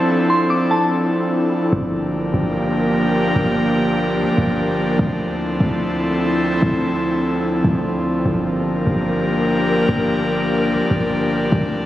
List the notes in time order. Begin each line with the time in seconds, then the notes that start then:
Already playing: F3 C4 D4 E4 A4
0.30 C6
0.50 D6
0.71 A5
1.73 G1 F3 A#3 D4 G4 A#4
2.34 G1
3.36 G1
4.18 D2
4.38 G1
4.99 D2 C4 E4 A4
5.60 D2
6.62 D2
7.64 D2
8.26 G1 A#3 D4 G4 A#4
8.87 G1
9.89 G1
10.71 D2
10.91 G1
11.52 D2 F3 C4 E4 A4